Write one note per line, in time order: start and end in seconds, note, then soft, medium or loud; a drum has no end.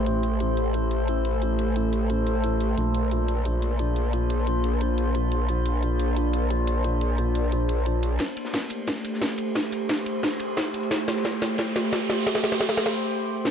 0.00 2.76 A1 medium
0.00 2.73 A3 medium
0.00 2.73 C5 medium
0.06 2.75 A4 medium
0.06 closed hi-hat medium
0.23 closed hi-hat medium
0.40 closed hi-hat medium
0.57 closed hi-hat medium
0.74 closed hi-hat medium
0.91 closed hi-hat medium
1.08 closed hi-hat medium
1.25 closed hi-hat medium
1.42 closed hi-hat medium
1.59 closed hi-hat medium
1.76 closed hi-hat medium
1.93 closed hi-hat medium
2.10 closed hi-hat medium
2.27 closed hi-hat medium
2.44 closed hi-hat medium
2.60 closed hi-hat medium
2.77 8.18 A#1 medium
2.77 8.16 A#3 medium
2.77 8.16 D4 medium
2.77 8.16 C5 medium
2.77 closed hi-hat medium
2.94 closed hi-hat medium
3.11 closed hi-hat medium
3.28 closed hi-hat medium
3.45 closed hi-hat medium
3.62 closed hi-hat medium
3.79 closed hi-hat medium
3.96 closed hi-hat medium
4.13 closed hi-hat medium
4.30 closed hi-hat medium
4.47 closed hi-hat medium
4.64 closed hi-hat medium
4.81 closed hi-hat medium
4.98 closed hi-hat medium
5.15 closed hi-hat medium
5.32 closed hi-hat medium
5.49 closed hi-hat medium
5.66 closed hi-hat medium
5.83 closed hi-hat medium
6.00 closed hi-hat medium
6.16 closed hi-hat medium
6.33 closed hi-hat medium
6.50 closed hi-hat medium
6.67 closed hi-hat medium
6.84 closed hi-hat medium
7.01 closed hi-hat medium
7.18 closed hi-hat medium
7.35 closed hi-hat loud
7.52 closed hi-hat medium
7.69 closed hi-hat medium
7.86 closed hi-hat medium
8.03 closed hi-hat medium
8.19 13.51 A3 medium
8.19 13.51 G4 medium
8.19 13.51 C5 medium
8.19 kick loud
8.19 snare soft
8.19 closed hi-hat medium
8.19 ride medium
8.19 riser medium
8.37 closed hi-hat medium
8.37 ride medium
8.45 snare medium
8.54 kick loud
8.54 snare soft
8.54 snare loud
8.54 closed hi-hat medium
8.54 ride medium
8.70 closed hi-hat medium
8.70 ride medium
8.87 kick loud
8.87 snare medium
8.87 closed hi-hat medium
8.87 ride medium
8.95 snare soft
9.05 closed hi-hat medium
9.05 ride medium
9.14 snare soft
9.22 kick loud
9.22 snare medium
9.22 snare loud
9.22 closed hi-hat medium
9.22 ride medium
9.38 closed hi-hat medium
9.38 ride medium
9.55 kick loud
9.55 snare medium
9.55 closed hi-hat medium
9.55 ride medium
9.63 snare soft
9.72 closed hi-hat medium
9.72 ride medium
9.89 kick loud
9.89 snare medium
9.89 snare loud
9.89 closed hi-hat medium
9.89 ride medium
9.99 snare soft
10.06 closed hi-hat loud
10.06 ride medium
10.23 kick loud
10.23 snare medium
10.23 closed hi-hat medium
10.23 ride medium
10.32 snare soft
10.39 closed hi-hat medium
10.39 ride medium
10.57 kick loud
10.57 snare medium
10.57 snare loud
10.57 closed hi-hat medium
10.57 ride medium
10.74 closed hi-hat medium
10.74 ride medium
10.83 ride soft
10.91 kick loud
10.91 snare medium
10.91 closed hi-hat medium
10.91 ride medium
11.08 snare medium
11.08 closed hi-hat medium
11.08 ride medium
11.16 snare medium
11.25 kick loud
11.25 snare medium
11.25 snare loud
11.25 closed hi-hat medium
11.25 ride medium
11.42 snare medium
11.42 closed hi-hat medium
11.42 ride medium
11.58 kick loud
11.58 snare medium
11.58 closed hi-hat medium
11.58 ride medium
11.67 snare soft
11.76 snare medium
11.76 closed hi-hat medium
11.76 ride medium
11.84 snare soft
11.93 kick loud
11.93 snare medium
11.93 snare loud
11.93 closed hi-hat medium
11.93 ride medium
12.09 snare loud
12.09 snare medium
12.09 closed hi-hat medium
12.09 ride medium
12.19 snare soft
12.27 kick loud
12.27 snare medium
12.27 closed hi-hat medium
12.27 ride medium
12.35 snare loud
12.35 snare medium
12.35 ride medium
12.43 snare soft
12.43 snare medium
12.43 closed hi-hat medium
12.52 snare medium
12.52 ride medium
12.60 kick loud
12.60 snare loud
12.60 closed hi-hat medium
12.60 ride medium
12.69 snare medium
12.69 snare soft
12.77 snare medium
12.77 snare loud
12.77 closed hi-hat medium
12.77 ride medium
12.86 snare medium
13.45 snare medium